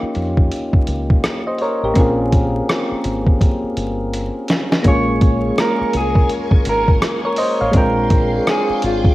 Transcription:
Already playing: synth keys A#3 C#4 D#4 F4 G4
0.03 muted fingered electric bass stroke
0.15 fingered electric bass F2, closed hi-hat
0.37 kick
0.51 closed hi-hat
0.73 muted fingered electric bass stroke, kick
0.87 fingered electric bass C#2, closed hi-hat
1.10 kick
1.24 cross-stick, closed hi-hat
1.47 synth keys C5 D#5
1.58 synth keys A#4 C#5, closed hi-hat
1.83 fingered electric bass A1, synth keys G4 A#4
1.94 fingered electric bass A#1, synth keys A#3 C4 C#4, kick, closed hi-hat
1.98 synth keys F4 G#4
2.32 kick, closed hi-hat
2.69 cross-stick, closed hi-hat
2.92 muted fingered electric bass stroke
3.04 fingered electric bass G#1, closed hi-hat
3.26 kick
3.41 kick, closed hi-hat
3.63 muted fingered electric bass stroke
3.77 fingered electric bass G1, closed hi-hat
4.13 closed hi-hat
4.48 snare, closed hi-hat
4.72 snare
4.83 fingered electric bass A#1, synth keys G#3 A#3 C#4, string machine A#4 G#5 C6 C#6, kick, closed hi-hat
4.87 synth keys F4 G#4, clean electric guitar C#5
5.21 kick, closed hi-hat
5.58 clean electric guitar A#4, cross-stick, closed hi-hat
5.81 muted fingered electric bass stroke
5.93 fingered electric bass C2, clean electric guitar G#4, closed hi-hat
6.15 kick
6.29 closed hi-hat
6.51 muted fingered electric bass stroke, kick
6.65 fingered electric bass G#1, closed hi-hat
6.69 clean electric guitar A#4
6.88 kick
7.02 cross-stick, closed hi-hat
7.25 synth keys A#4 C#5
7.36 synth keys C5 D#5, open hi-hat
7.61 fingered electric bass A1, synth keys C#5 F5
7.72 fingered electric bass A#1, synth keys G#3 C4 D4, string machine G#4 G5 D6, kick, closed hi-hat
7.76 synth keys F4 G5, clean electric guitar A#4
8.10 kick, closed hi-hat
8.47 clean electric guitar G#4, cross-stick, closed hi-hat
8.70 muted fingered electric bass stroke
8.82 fingered electric bass G#1, clean electric guitar F4, closed hi-hat
9.05 kick

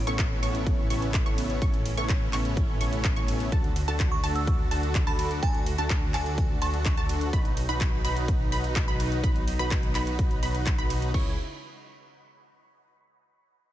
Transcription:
Already playing: string section C#3 A3 B3
0.07 detuned saw bass A1, supersaw synth B3 C#4 E4 A4 C#5, synth pluck C#6, closed hi-hat
0.19 kick, clap, closed hi-hat
0.43 detuned saw bass A1, supersaw synth B3 C#4 E4 A4 C#5, synth pluck C#6, open hi-hat, ride
0.55 closed hi-hat
0.67 kick, closed hi-hat
0.90 detuned saw bass A1, supersaw synth B3 C#4 E4 A4 C#5, synth pluck C#6, open hi-hat, ride
1.02 closed hi-hat
1.14 kick, clap, closed hi-hat
1.26 detuned saw bass A1, supersaw synth B3 C#4 E4 A4 C#5, synth pluck C#6, closed hi-hat
1.38 open hi-hat, ride
1.50 closed hi-hat
1.62 detuned saw bass A1, supersaw synth B3 C#4 E4 A4, string section C#4, synth pluck C#6, kick, closed hi-hat
1.74 closed hi-hat
1.86 open hi-hat, ride
1.97 detuned saw bass A1, supersaw synth B3 C#4 E4 A4 C#5, synth pluck C#6, closed hi-hat
2.09 kick, clap, closed hi-hat
2.33 detuned saw bass A1, supersaw synth B3 C#4 E4 A4 C#5, synth pluck C#6, clap, open hi-hat, ride
2.45 closed hi-hat
2.57 kick, closed hi-hat
2.81 detuned saw bass A1, supersaw synth B3 C#4 E4 A4 C#5, synth pluck C#6, open hi-hat, ride
2.93 closed hi-hat
3.05 kick, clap, closed hi-hat
3.16 detuned saw bass A1, supersaw synth B3 C#4 E4 A4 C#5, synth pluck C#6, closed hi-hat
3.28 open hi-hat, ride
3.40 closed hi-hat
3.52 detuned saw bass D2, string section D3 F#4, supersaw synth D4 F#4 A4, synth pluck A5, kick, closed hi-hat
3.64 closed hi-hat
3.76 open hi-hat, ride
3.88 detuned saw bass D2, supersaw synth D4 F#4 A4, synth pluck A5, closed hi-hat
4.00 kick, clap, closed hi-hat
4.12 synth bell C#6
4.24 detuned saw bass D2, supersaw synth D4 F#4 A4, synth pluck A5, open hi-hat, ride
4.35 synth bell E6, closed hi-hat
4.47 synth bell E6, kick, closed hi-hat
4.71 detuned saw bass D2, supersaw synth D4 F#4 A4, synth pluck A5, open hi-hat, ride
4.83 closed hi-hat
4.95 kick, clap, closed hi-hat
5.07 detuned saw bass D2, supersaw synth D4 F#4 A4, synth pluck A5, synth bell B5, closed hi-hat
5.19 synth bell B5, open hi-hat, ride
5.31 closed hi-hat
5.42 detuned saw bass D2, supersaw synth D4, synth bell G#5, synth pluck A5, kick, closed hi-hat
5.55 closed hi-hat
5.66 open hi-hat, ride
5.78 detuned saw bass D2, supersaw synth D4 F#4 A4, synth pluck A5, closed hi-hat
5.90 kick, clap, closed hi-hat
6.14 detuned saw bass D2, supersaw synth D4 F#4 A4, synth bell G#5, synth pluck A5, clap, open hi-hat, ride
6.26 closed hi-hat
6.38 kick, closed hi-hat
6.62 detuned saw bass D2, supersaw synth D4 F#4 A4, synth pluck A5, synth bell C#6, open hi-hat, ride
6.74 closed hi-hat
6.85 kick, clap, closed hi-hat
6.97 detuned saw bass D2, supersaw synth D4 F#4 A4, synth pluck A5, closed hi-hat
7.09 open hi-hat, ride
7.21 closed hi-hat
7.33 detuned saw bass B1, string section F#3 B3 D#4, synth pluck B5, kick, closed hi-hat
7.45 closed hi-hat
7.57 open hi-hat, ride
7.69 detuned saw bass B1, supersaw synth D#4 F#4 B4, synth pluck B5, closed hi-hat
7.81 kick, clap, closed hi-hat
8.05 detuned saw bass B1, supersaw synth D#4 F#4 B4, synth pluck B5, open hi-hat, ride
8.16 closed hi-hat
8.28 kick, closed hi-hat
8.52 detuned saw bass B1, supersaw synth D#4 F#4 B4, synth pluck B5, open hi-hat, ride
8.64 closed hi-hat
8.76 kick, clap, closed hi-hat
8.88 detuned saw bass B1, supersaw synth D#4 F#4 B4, synth pluck B5, closed hi-hat
9.00 open hi-hat, ride
9.12 closed hi-hat
9.24 detuned saw bass B1, supersaw synth D#4 F#4 B4, synth pluck B5, kick, closed hi-hat
9.36 closed hi-hat
9.48 open hi-hat, ride
9.59 detuned saw bass B1, supersaw synth D#4 F#4 B4, synth pluck B5, closed hi-hat
9.71 kick, clap, closed hi-hat
9.83 closed hi-hat
9.95 detuned saw bass B1, supersaw synth D#4 F#4 B4, synth pluck B5, clap, open hi-hat, ride
10.07 closed hi-hat
10.19 kick, closed hi-hat
10.31 closed hi-hat
10.43 detuned saw bass B1, supersaw synth D#4 F#4 B4, synth pluck B5, open hi-hat, ride
10.55 closed hi-hat
10.66 kick, clap, closed hi-hat
10.78 detuned saw bass B1, supersaw synth D#4 F#4 B4, synth pluck B5, closed hi-hat
10.90 open hi-hat, ride
11.02 closed hi-hat
11.14 detuned saw bass C#2, string section C#3 G#3 E4, supersaw synth E4 G#4 C#5, synth pluck C#6, kick, crash

